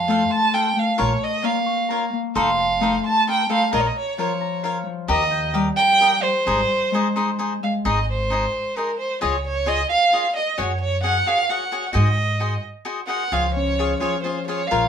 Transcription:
Already playing: upright bass F2, violin F5, harp A5 C6
0.08 harp A3, cavaquinho F4 A4 C5 F5
0.30 violin A5, harp C6
0.53 cavaquinho F4 A4 C5 F5, violin G5, harp A5
0.76 harp A3, violin F5
0.98 upright bass A#1, cavaquinho F4 A#4 C#5 F5, violin C#5, harp C#6
1.24 violin D#5
1.42 harp A#3, cavaquinho F4 A#4 C#5 F5, violin F5
1.66 harp C#6
1.89 cavaquinho F4 A#4 C#5 F5, harp A#5
2.13 harp A#3
2.35 upright bass F1, cavaquinho D#4 A4 C5 F5, violin F5, harp C6
2.58 harp A5
2.80 harp A3, cavaquinho D#4 A4 C5 F5
3.03 violin A5, harp C6
3.26 cavaquinho D#4 A4 C5 F5, harp A5
3.30 violin G5
3.49 harp A3, cavaquinho D#4 A4 C5 F5, violin F5
3.71 upright bass A#1, cavaquinho F4 A#4 C#5 F5, violin D#5, harp A#5
3.80 violin C#5
3.86 violin D#5
3.99 violin C#5
4.18 harp F3, cavaquinho F4 A#4 C#5 F5, violin C#5
4.41 harp A#5
4.63 cavaquinho F4 A#4 C#5 F5, harp F5
4.86 harp F3
5.08 upright bass D#2, cavaquinho G4 A#4 D#5 F5, violin D#5, harp A#5
5.31 harp G5
5.53 harp G3, cavaquinho G4 A#4 D#5 F5
5.76 violin G5, harp A#5
6.00 cavaquinho G4 A#4 D#5 F5, harp G5
6.23 harp G3, violin C5
6.45 upright bass G#1, cavaquinho D#4 G#4 C5 D#5, harp C6
6.91 harp G#3, cavaquinho D#4 G#4 C5 D#5
7.15 cavaquinho D#4 G#4 C5 D#5, harp C6
7.39 cavaquinho D#4 G#4 C5 D#5, harp G#5
7.63 harp G#3, violin F5
7.85 upright bass G#1, cavaquinho D#4 G#4 C5 D#5, violin D#5
8.10 violin C5
8.30 cavaquinho D#4 G#4 C5 D#5
8.76 cavaquinho D#4 G#4 C5 D#5, violin A#4
8.99 violin C5
9.21 upright bass C#2, cavaquinho F4 G#4 C#5 D#5, violin C#5
9.47 violin C#5
9.66 cavaquinho F4 G#4 C#5 D#5, violin D#5
9.89 violin F5
10.13 cavaquinho F4 G#4 C#5 D#5
10.36 violin D#5
10.58 upright bass F#2, cavaquinho F#4 G#4 C#5 F#5, violin C#5
10.80 violin C#5
11.03 cavaquinho F#4 G#4 C#5 F#5, violin F#5
11.26 cavaquinho F#4 G#4 C#5 F#5, violin F5
11.49 cavaquinho F#4 G#4 C#5 F#5, violin F#5
11.72 cavaquinho F#4 G#4 C#5 F#5
11.93 upright bass G#2, cavaquinho F#4 G#4 C5 D#5, violin D#5
12.40 cavaquinho F#4 G#4 C5 D#5
12.85 cavaquinho F#4 G#4 C5 D#5
13.07 cavaquinho F#4 G#4 C5 D#5, violin F#5
13.32 upright bass C#2, harp F3, cavaquinho F4 G#4 C#5 F5, violin F5
13.54 harp C#4, violin C#5
13.79 cavaquinho F4 G#4 C#5 F5, harp G#4
14.00 harp F3, cavaquinho F4 G#4 C#5 F5, violin C#5
14.23 harp C#4, cavaquinho F4 G#4 C#5 F5, violin C5
14.47 cavaquinho F4 G#4 C#5 F5, harp G#4, violin C#5
14.67 harp F3, cavaquinho F4 A#4, violin F5
14.71 upright bass A#1, cavaquinho C#5 F5

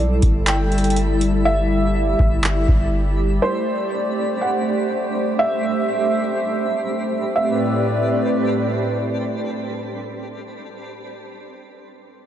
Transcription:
Already playing: analog synth pad G3 E4 A4, synth texture A3 E4 B5
0.00 808-style bass B1
0.22 808-style bass G1, kick, closed hi-hat
0.47 felt piano G5, clap, closed hi-hat
0.72 closed hi-hat
0.78 closed hi-hat
0.84 closed hi-hat
0.90 closed hi-hat
0.96 closed hi-hat
1.21 closed hi-hat
1.45 analog synth pad G4, felt piano E5
2.19 808-style bass G1, kick
2.44 clap
2.68 808-style bass G1, kick
3.42 synth texture A2 G3 C4 D4, analog synth pad A3 C5 D5, felt piano C5
4.41 felt piano F#5
5.39 analog synth pad E5, felt piano E5
7.36 analog synth pad A2 A3 C4 G4 B4 D5, synth texture G3 C4 D4 A4 B4, felt piano E5

